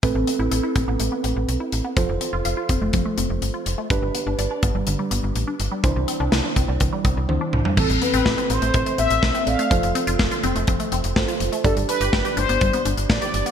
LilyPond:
<<
  \new Staff \with { instrumentName = "Analog polysynth" } { \time 4/4 \key a \minor \tempo 4 = 124 r1 | r1 | r1 | r1 |
a'8 b'4 c''4 e''4 f''8~ | f''8 r2. r8 | a'8 b'4 c''4 r8 d''4 | }
  \new Staff \with { instrumentName = "Tine electric piano" } { \time 4/4 \key a \minor <c' a' b'>1 | <f' a' c''>1 | <d' g' b'>1 | <d' e' c''>2. <d' e' c''>4 |
<c' a'>2.~ <c' a'>8 <c' a' d''>8 | <f' a' c''>2. <f' a' c''>4 | <d' g' d''>1 | }
  \new Staff \with { instrumentName = "Synth arpeggio sound" } { \time 4/4 \key a \minor a16 r16 c'16 e'16 a'16 e'16 c'16 b16 a16 b16 c'16 r8 e'16 r16 b16 | f16 r16 c'16 f'16 f''16 f'16 c'16 a16 f16 a16 c'16 r8 f'16 r16 a16 | d16 r16 b16 d'16 d''16 d'16 b16 g16 d16 g16 b16 r8 d'16 r16 g16 | e16 r16 c'16 d'16 e'16 d'16 c'16 g16 e16 g16 c'16 r8 d'16 r16 g16 |
e16 r16 b16 c'16 e'16 c'16 b16 a16 e16 a16 b16 r8 c'16 r16 a16 | f16 r16 c'16 f'16 f''16 f'16 c'16 a16 f16 a16 c'16 r8 f'16 r16 a16 | g16 r16 d'16 g'16 g''16 g'16 d'16 b16 g16 b16 d'16 r8 g'16 r16 b16 | }
  \new Staff \with { instrumentName = "FM bass" } { \clef bass \time 4/4 \key a \minor a,,16 a,,16 r16 a,,16 a,,16 r16 a,,16 a,,16 a,,16 r16 a,,16 a,,16 b,,16 r16 a,,16 r16 | f,,16 f,,16 r16 f,,16 f,,16 r16 f,,16 f,,16 f,,16 r16 f,,16 f,,16 g,,16 r16 f,,16 r16 | g,,16 g,,16 r16 g,,16 g,,16 r16 g,,16 g,,16 g,,16 r16 g,,16 g,,16 a,,16 r16 g,,16 r16 | c,16 c,16 r16 c,16 c,16 r16 c,16 c,16 c,16 r16 c,16 c,16 d,16 r16 c,16 r16 |
a,,16 a,,16 r16 a,,16 a,,16 r16 a,,16 a,,16 a,,16 r16 a,,16 a,,16 b,,16 r16 a,,16 r16 | f,,16 f,,16 r16 f,,16 f,,16 r16 f,,16 f,,16 f,,16 r16 f,,16 f,,16 g,,16 r16 f,,16 r16 | g,,16 g,,16 r16 g,,16 g,,16 r16 g,,16 g,,16 g,,16 r16 g,,16 g,,16 a,,16 r16 g,,16 r16 | }
  \new DrumStaff \with { instrumentName = "Drums" } \drummode { \time 4/4 <hh bd>8 hh8 hh8 <hh bd>8 hh8 hh8 hh8 hh8 | <hh bd>8 hh8 hh8 <hh bd>8 <hh bd>8 hh8 hh8 hh8 | <hh bd>8 hh8 hh8 <hh bd>8 hh8 hh8 hh8 hh8 | <hh bd>8 hh8 <hh sn>8 <hh bd>8 <hh bd>8 <hh bd>8 tommh8 toml16 tomfh16 |
<cymc bd>16 hh16 hh16 hh16 <bd sn>16 hh16 hh16 hh16 <hh bd>16 hh16 hh16 hh16 <bd sn>16 hh16 hh16 hh16 | <hh bd>16 hh16 hh16 hh16 <bd sn>16 hh16 hh16 hh16 <hh bd>16 hh16 hh16 hh16 <bd sn>16 hh16 hh16 hh16 | <hh bd>16 hh16 hh16 hh16 <bd sn>16 hh16 hh16 hh16 <hh bd>16 hh16 hh16 hh16 <bd sn>16 hh16 hh16 hh16 | }
>>